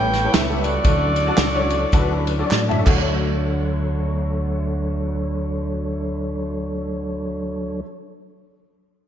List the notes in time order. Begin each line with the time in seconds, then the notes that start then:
Already playing: A1 A2 G3 B3 E4 G4 A4 B4 C#5 G5
0.13 snare, ride, tambourine
0.24 B3 E4 G4 A4 C#5
0.33 C#2 E5, snare, clap, ride, tambourine
0.48 B3 E4 G4 A4 E5
0.63 F#4 A4 D5, ride, tambourine
0.84 D2 D3 F#3 C#4 D4 F#4 A4 D5, kick, ride, tambourine
1.16 ride, tambourine
1.26 C#4 D4 F#4 A4 D5
1.37 C#2, snare, clap, ride, tambourine
1.54 C#4 D4 F#4 A4 C#5
1.70 ride, tambourine
1.92 D2 C#4 D4 F#4 A4 B4, kick, ride, tambourine
2.27 ride, tambourine
2.38 C#4 D4 F#4 A4 D5
2.51 A2, snare, clap, tambourine
2.68 C#4 D4 F#4 A4 E5, mid tom
2.84 D2 F#3 A3 D4 F#4 A4 C#5, kick, clap, crash